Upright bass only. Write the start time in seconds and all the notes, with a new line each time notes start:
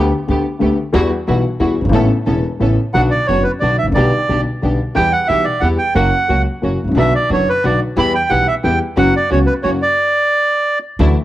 0.28 D2
0.61 D2
0.94 E2
1.28 B1
1.60 E2
1.81 F#1 G1
1.89 G#1 A1
2.27 E1
2.61 A1
2.95 B1
3.29 F#1
3.62 B1
3.83 G#1 A1
3.92 A#1 B1
4.29 B1
4.63 B1
4.97 E2
5.30 B1
5.62 E2
5.95 F#1
6.29 C#2
6.63 F#1
6.84 G#1 A1
6.91 A#1 B1
7.30 F#1
7.64 B1
7.97 E2
8.31 B1
8.64 E2
8.97 F#1
9.31 C#2
9.65 F#1
10.99 D2